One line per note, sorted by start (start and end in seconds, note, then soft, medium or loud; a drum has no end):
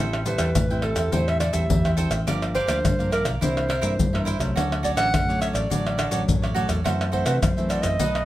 0.00 0.35 A1 medium
0.00 0.53 A2 soft
0.00 0.22 G3 soft
0.00 0.23 C4 medium
0.00 0.23 E4 medium
0.00 0.24 A4 medium
0.00 0.25 C5 medium
0.00 0.25 E5 medium
0.00 0.26 G5 medium
0.13 pandeiro soft
0.13 tamborim medium
0.13 maracas soft
0.25 0.53 G3 medium
0.25 0.53 C4 soft
0.25 0.54 E4 medium
0.25 0.37 A4 medium
0.25 0.85 B4 medium
0.25 0.38 C5 medium
0.25 0.38 E5 medium
0.25 0.38 G5 medium
0.25 pandeiro medium
0.25 maracas medium
0.25 surdo soft
0.38 0.52 E2 medium
0.38 0.49 A4 medium
0.38 0.49 C5 medium
0.38 0.49 E5 medium
0.38 0.49 G5 medium
0.38 pandeiro medium
0.38 tamborim medium
0.38 maracas medium
0.55 0.92 A2 medium
0.55 1.10 E3 medium
0.55 pandeiro loud
0.55 tamborim medium
0.55 maracas medium
0.55 surdo loud
0.70 1.08 G3 medium
0.70 1.09 C4 medium
0.70 1.09 E4 medium
0.70 0.82 C5 soft
0.70 0.82 E5 soft
0.70 0.83 G5 medium
0.70 pandeiro soft
0.70 maracas soft
0.82 0.97 A4 soft
0.82 1.14 A4 medium
0.82 0.96 C5 soft
0.82 0.95 E5 medium
0.82 0.94 G5 medium
0.82 pandeiro medium
0.82 tamborim medium
0.95 1.09 E2 medium
0.95 1.11 C5 soft
0.95 1.11 E5 soft
0.95 1.10 G5 soft
0.95 pandeiro medium
0.95 tamborim medium
0.95 maracas medium
0.95 surdo soft
1.12 1.50 E2 loud
1.12 1.67 A2 medium
1.12 1.40 G3 medium
1.12 1.40 C4 medium
1.12 1.40 E4 medium
1.12 1.39 A4 medium
1.12 1.39 C5 medium
1.12 1.30 C5 medium
1.12 1.40 E5 medium
1.12 1.40 G5 medium
1.12 pandeiro medium
1.12 maracas medium
1.12 surdo medium
1.28 1.40 E5 loud
1.28 pandeiro soft
1.28 tamborim medium
1.28 maracas soft
1.40 1.52 A4 medium
1.40 1.52 C5 soft
1.40 1.55 D5 medium
1.40 1.52 E5 soft
1.40 1.52 G5 medium
1.40 pandeiro medium
1.40 tamborim medium
1.40 maracas medium
1.53 1.67 E2 medium
1.53 1.93 G3 medium
1.53 1.93 C4 medium
1.53 1.93 E4 medium
1.53 1.63 A4 medium
1.53 1.63 C5 medium
1.53 1.97 E5 medium
1.53 1.64 E5 medium
1.53 1.64 G5 medium
1.53 pandeiro medium
1.53 maracas medium
1.53 surdo soft
1.70 2.07 E2 medium
1.70 2.24 E3 medium
1.70 pandeiro medium
1.70 maracas medium
1.70 surdo loud
1.84 1.96 C5 soft
1.84 1.97 E5 soft
1.84 1.97 G5 medium
1.84 pandeiro soft
1.84 tamborim medium
1.84 maracas soft
1.97 2.15 G3 medium
1.97 2.15 C4 medium
1.97 2.15 E4 medium
1.97 2.11 A4 medium
1.97 2.11 C5 medium
1.97 2.10 E5 medium
1.97 2.09 G5 medium
1.97 pandeiro medium
1.97 maracas medium
2.10 2.24 A1 medium
2.10 2.26 C5 soft
2.10 2.25 E5 soft
2.10 2.25 G5 medium
2.10 pandeiro medium
2.10 tamborim medium
2.10 maracas medium
2.10 surdo soft
2.27 2.64 G1 medium
2.27 2.82 G2 soft
2.27 2.54 F3 medium
2.27 2.54 A#3 medium
2.27 2.54 D4 medium
2.27 2.53 G4 medium
2.27 2.54 A#4 medium
2.27 2.54 D5 medium
2.27 2.55 F5 medium
2.27 pandeiro medium
2.27 tamborim medium
2.27 maracas medium
2.27 surdo medium
2.42 pandeiro soft
2.42 tamborim medium
2.42 maracas soft
2.55 2.66 G4 medium
2.55 2.66 A#4 medium
2.55 3.09 C5 loud
2.55 2.67 D5 medium
2.55 2.67 F5 medium
2.55 pandeiro medium
2.55 surdo soft
2.67 2.81 D2 medium
2.67 2.93 F3 medium
2.67 2.93 A#3 medium
2.67 2.93 D4 medium
2.67 2.78 G4 medium
2.67 2.78 A#4 medium
2.67 2.78 D5 medium
2.67 2.78 F5 medium
2.67 pandeiro medium
2.67 tamborim medium
2.67 maracas medium
2.84 3.21 G2 medium
2.84 3.39 D3 medium
2.84 pandeiro medium
2.84 tamborim medium
2.84 maracas medium
2.84 surdo loud
2.99 3.37 F3 medium
2.99 3.38 A#3 medium
2.99 3.38 D4 medium
2.99 3.11 A#4 soft
2.99 3.11 D5 soft
2.99 3.12 F5 soft
2.99 pandeiro soft
2.99 maracas soft
3.11 3.25 G4 soft
3.11 3.25 A#4 medium
3.11 3.26 A#4 medium
3.11 3.24 D5 medium
3.11 3.23 F5 medium
3.11 pandeiro medium
3.11 tamborim medium
3.11 maracas medium
3.24 3.39 B1 medium
3.24 3.40 A#4 soft
3.24 3.40 D5 soft
3.24 3.39 F5 medium
3.24 pandeiro medium
3.24 tamborim medium
3.24 maracas medium
3.24 surdo soft
3.41 3.79 C2 medium
3.41 3.96 C3 medium
3.41 3.68 E3 medium
3.41 3.69 A#3 medium
3.41 3.69 D4 medium
3.41 3.67 E4 medium
3.41 3.68 A#4 medium
3.41 3.69 C5 medium
3.41 4.24 C5 loud
3.41 3.69 E5 medium
3.41 pandeiro medium
3.41 maracas medium
3.41 surdo medium
3.57 pandeiro soft
3.57 tamborim medium
3.57 maracas soft
3.69 3.80 E4 medium
3.69 3.81 A#4 soft
3.69 3.81 C5 medium
3.69 3.81 E5 medium
3.69 pandeiro medium
3.69 tamborim medium
3.81 3.96 G2 medium
3.81 4.07 E3 medium
3.81 4.08 A#3 medium
3.81 4.08 D4 medium
3.81 3.92 E4 medium
3.81 3.92 A#4 medium
3.81 3.92 C5 medium
3.81 3.93 E5 medium
3.81 pandeiro medium
3.81 maracas medium
3.81 surdo soft
3.99 4.53 G2 medium
3.99 4.36 G2 medium
3.99 pandeiro medium
3.99 maracas medium
3.99 surdo loud
4.13 4.37 E3 medium
4.13 4.38 A#3 medium
4.13 4.38 D4 medium
4.13 4.25 A#4 soft
4.13 4.25 C5 soft
4.13 4.26 E5 soft
4.13 pandeiro soft
4.13 tamborim medium
4.13 maracas soft
4.13 surdo soft
4.25 4.40 E4 medium
4.25 4.39 A#4 medium
4.25 4.38 C5 medium
4.25 4.38 E5 medium
4.25 pandeiro medium
4.25 maracas medium
4.39 4.53 C2 medium
4.39 4.82 F#3 medium
4.39 4.83 A3 medium
4.39 4.83 C#4 medium
4.39 4.54 A#4 soft
4.39 4.54 C5 soft
4.39 4.54 E5 soft
4.39 pandeiro medium
4.39 tamborim medium
4.39 maracas medium
4.39 surdo soft
4.56 4.93 D2 medium
4.56 5.11 D3 medium
4.56 4.82 F#4 medium
4.56 4.82 A4 medium
4.56 4.83 C#5 medium
4.56 4.83 D5 medium
4.56 pandeiro medium
4.56 tamborim medium
4.56 maracas medium
4.56 surdo medium
4.72 pandeiro soft
4.72 tamborim medium
4.72 maracas soft
4.83 5.11 F#3 medium
4.83 5.11 A3 medium
4.83 5.12 C#4 medium
4.83 4.95 F#4 medium
4.83 4.96 A4 medium
4.83 4.96 C#5 medium
4.83 4.96 D5 medium
4.83 4.91 D5 medium
4.83 pandeiro medium
4.83 maracas medium
4.83 surdo soft
4.96 5.10 A1 medium
4.96 5.07 F#4 medium
4.96 5.07 A4 medium
4.96 5.07 C#5 medium
4.96 5.07 D5 medium
4.96 5.38 F#5 loud
4.96 pandeiro medium
4.96 tamborim medium
4.96 maracas medium
5.13 5.68 A2 medium
5.13 5.50 D3 medium
5.13 pandeiro medium
5.13 tamborim medium
5.13 maracas medium
5.13 surdo loud
5.28 5.67 F#3 medium
5.28 5.67 A3 medium
5.28 5.67 C#4 medium
5.28 5.40 A4 soft
5.28 5.40 C#5 soft
5.28 5.41 D5 soft
5.28 pandeiro soft
5.28 maracas soft
5.40 5.55 F#4 soft
5.40 5.53 A4 medium
5.40 5.53 C#5 medium
5.40 5.52 D5 medium
5.40 5.48 E5 medium
5.40 pandeiro medium
5.40 tamborim medium
5.40 maracas medium
5.53 5.68 A1 medium
5.53 5.69 A4 soft
5.53 5.69 C#5 soft
5.53 5.68 D5 medium
5.53 6.37 D5 medium
5.53 pandeiro medium
5.53 tamborim medium
5.53 maracas medium
5.53 surdo soft
5.70 6.07 A1 medium
5.70 6.25 D3 medium
5.70 5.98 F#3 medium
5.70 5.98 A3 medium
5.70 5.98 C#4 medium
5.70 5.96 F#4 medium
5.70 5.97 A4 medium
5.70 5.97 C#5 medium
5.70 5.98 D5 medium
5.70 pandeiro medium
5.70 maracas medium
5.70 surdo medium
5.87 pandeiro soft
5.87 tamborim medium
5.87 maracas soft
5.98 6.10 F#4 medium
5.98 6.10 A4 medium
5.98 6.10 C#5 soft
5.98 6.11 D5 medium
5.98 pandeiro medium
5.98 tamborim medium
5.98 maracas medium
6.11 6.25 A1 medium
6.11 6.51 F#3 medium
6.11 6.51 A3 medium
6.11 6.51 C#4 medium
6.11 6.22 F#4 medium
6.11 6.22 A4 medium
6.11 6.22 C#5 medium
6.11 6.22 D5 medium
6.11 pandeiro medium
6.11 maracas medium
6.11 surdo soft
6.28 6.65 A1 medium
6.28 6.82 A2 medium
6.28 pandeiro medium
6.28 maracas medium
6.28 surdo loud
6.42 6.54 A4 soft
6.42 6.54 C#5 soft
6.42 6.55 D5 soft
6.42 pandeiro soft
6.42 tamborim medium
6.42 maracas soft
6.54 6.80 F#3 medium
6.54 6.80 A3 medium
6.54 6.81 C#4 medium
6.54 6.69 F#4 medium
6.54 6.68 A4 medium
6.54 6.67 C#5 medium
6.54 6.66 D5 medium
6.54 pandeiro medium
6.69 6.82 E2 medium
6.69 6.83 A4 soft
6.69 pandeiro medium
6.69 tamborim medium
6.69 maracas medium
6.69 surdo soft
6.84 7.40 F#2 soft
6.84 7.22 F#2 loud
6.84 7.09 E3 soft
6.84 7.10 A3 soft
6.84 7.10 C4 medium
6.84 7.10 F#4 medium
6.84 7.11 A4 medium
6.84 7.11 C5 medium
6.84 7.12 E5 medium
6.84 pandeiro medium
6.84 tamborim medium
6.84 maracas medium
6.84 surdo medium
7.01 pandeiro soft
7.01 tamborim medium
7.01 maracas soft
7.12 7.52 E3 soft
7.12 7.52 A3 soft
7.12 7.52 C4 medium
7.12 7.24 F#4 medium
7.12 7.24 A4 medium
7.12 7.25 C5 medium
7.12 7.25 E5 medium
7.12 pandeiro medium
7.12 surdo soft
7.25 7.39 C3 medium
7.25 7.36 F#4 medium
7.25 7.36 A4 medium
7.25 7.41 B4 medium
7.25 7.36 C5 medium
7.25 7.36 E5 medium
7.25 pandeiro medium
7.25 tamborim medium
7.25 maracas medium
7.42 7.97 F#2 medium
7.42 7.80 F#3 medium
7.42 7.71 C5 medium
7.42 pandeiro medium
7.42 tamborim medium
7.42 maracas medium
7.42 surdo loud
7.57 7.96 E3 medium
7.57 7.96 A3 medium
7.57 7.97 C4 medium
7.57 7.68 A4 soft
7.57 7.69 C5 soft
7.57 7.69 E5 soft
7.57 pandeiro soft
7.57 maracas soft
7.69 7.83 F#4 medium
7.69 7.82 A4 medium
7.69 7.82 C5 medium
7.69 7.84 D5 medium
7.69 7.81 E5 medium
7.69 pandeiro medium
7.69 tamborim medium
7.69 maracas medium
7.82 7.97 F#2 medium
7.82 7.98 A4 soft
7.82 7.98 C5 soft
7.82 8.25 D#5 loud
7.82 7.97 E5 medium
7.82 pandeiro medium
7.82 tamborim medium
7.82 maracas medium
7.82 surdo soft
7.99 8.25 B1 medium
7.99 8.25 B2 medium
7.99 8.25 F#3 medium
7.99 8.25 A3 medium
7.99 8.25 D#4 medium
7.99 8.25 A4 medium
7.99 8.25 B4 medium
7.99 8.25 D#5 medium
7.99 pandeiro medium
7.99 maracas medium
7.99 surdo medium
8.15 pandeiro soft
8.15 tamborim medium
8.15 maracas soft